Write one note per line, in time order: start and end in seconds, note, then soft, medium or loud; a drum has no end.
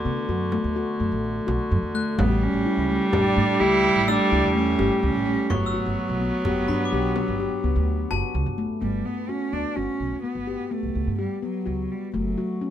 0.00 2.20 D3 medium
0.00 0.28 B3 medium
0.05 0.24 D3 medium
0.05 0.17 B3 medium
0.29 0.58 F#2 medium
0.29 0.41 F#4 medium
0.52 0.65 A3 medium
0.52 frame drum medium
0.64 0.83 D2 medium
0.76 0.89 F#4 medium
1.00 1.10 F#2 medium
1.00 1.25 A3 medium
1.12 1.41 A1 medium
1.24 frame drum soft
1.47 1.57 B1 medium
1.47 1.72 F#4 medium
1.47 frame drum medium
1.71 1.81 F#2 medium
1.83 2.02 E2 medium
1.95 2.07 A3 medium
1.95 2.39 F#6 medium
2.18 2.47 A1 loud
2.18 5.52 G3 loud
2.18 2.43 G3 medium
2.18 2.44 B3 medium
2.18 frame drum medium
2.42 3.12 C#4 medium
2.54 2.63 A1 medium
2.66 2.78 E4 medium
2.77 2.97 C#2 medium
2.89 3.01 A3 medium
3.13 3.39 A1 medium
3.13 3.62 D4 loud
3.13 3.25 G4 medium
3.13 frame drum medium
3.37 3.56 A2 medium
3.37 3.49 A3 medium
3.60 3.89 C#2 medium
3.60 4.10 E4 loud
3.60 3.85 G4 medium
3.84 frame drum medium
3.96 4.15 A1 medium
4.08 4.20 A3 medium
4.08 4.55 D4 medium
4.08 5.44 E6 medium
4.31 4.41 C#2 medium
4.31 4.44 E4 medium
4.43 4.72 E2 medium
4.55 4.68 A3 medium
4.55 4.99 C#4 medium
4.55 frame drum soft
4.79 4.89 G1 medium
4.79 5.04 G4 medium
4.79 frame drum soft
5.03 5.12 C#2 medium
5.03 5.51 C#4 medium
5.15 5.34 A1 medium
5.27 5.51 A3 medium
5.50 5.79 G1 loud
5.50 8.58 F#3 medium
5.50 8.34 B3 medium
5.50 6.86 C#6 medium
5.50 frame drum medium
5.66 7.00 E6 soft
5.74 5.99 F#4 medium
5.86 5.95 G1 medium
6.09 6.28 B1 medium
6.21 6.34 B3 medium
6.45 6.70 G1 medium
6.45 6.57 G4 medium
6.45 frame drum medium
6.68 6.88 G2 medium
6.68 6.81 D4 medium
6.68 8.04 B5 soft
6.85 8.19 D6 soft
6.92 7.21 B1 medium
6.92 7.05 G4 medium
7.16 7.28 B3 medium
7.16 frame drum soft
7.28 7.47 G1 medium
7.40 7.52 G4 medium
7.40 frame drum soft
7.64 7.73 C#2 medium
7.64 7.88 B3 medium
7.76 8.04 D2 medium
8.11 8.20 F#1 medium
8.11 8.36 F#4 medium
8.11 9.01 A5 medium
8.11 frame drum soft
8.34 8.44 C#2 medium
8.46 8.65 G1 medium
8.58 8.70 A3 medium
8.58 frame drum soft
8.81 9.01 G1 medium
8.81 9.07 G3 medium
8.81 9.06 B3 medium
9.05 9.30 B3 medium
9.29 9.54 C#4 medium
9.29 9.41 F#4 medium
9.53 9.62 D2 medium
9.53 9.65 B3 medium
9.53 9.77 D4 medium
9.76 9.86 G1 medium
9.76 10.23 C#4 medium
9.76 10.01 F#4 medium
10.00 10.10 B1 medium
10.12 10.22 D2 medium
10.23 10.73 B3 medium
10.23 10.36 B3 medium
10.35 10.55 G1 medium
10.47 10.60 G4 medium
10.71 11.19 A3 medium
10.71 10.96 B3 medium
10.83 10.93 B1 medium
10.95 11.05 C#2 medium
11.07 11.26 G2 medium
11.19 11.41 G3 medium
11.19 11.31 G4 medium
11.42 11.93 F#3 medium
11.42 11.55 B3 medium
11.66 11.86 C#2 medium
11.66 11.91 F#4 medium
11.92 12.15 G3 medium
12.14 12.33 F#1 medium
12.14 12.70 F#3 medium
12.14 12.26 A3 medium
12.38 12.50 F#4 medium
12.61 12.70 C#4 medium